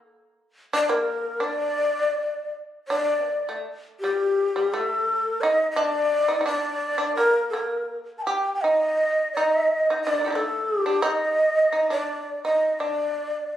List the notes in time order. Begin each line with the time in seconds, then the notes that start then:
0.73 D4 D5
0.89 A#3 A#4
1.40 D4 D5
2.88 D4 D5
3.26 A#3
3.49 A3
4.00 G3 G4
4.56 G3
4.74 A3 A4
5.41 D#4 D#5
5.71 D#5
5.76 D4 D5
6.28 D#4
6.41 D#4
6.46 D4 D5
6.98 D4
7.16 A#3 A#4
7.50 A#3 A#4
8.18 A5
8.23 G5
8.27 G4
8.55 G5
8.62 D#4 D#5
9.33 D#4 D#5
9.90 D#4
10.03 D4 D5
10.14 D5 D#5
10.21 A4 A#4
10.26 D#4 G4
10.30 A#3 D4
10.35 A3 A4
10.79 G4
10.86 D4
11.02 D#4 D#5
11.72 D#4
11.90 D4 D5
12.45 D#4 D#5
12.79 D4 D5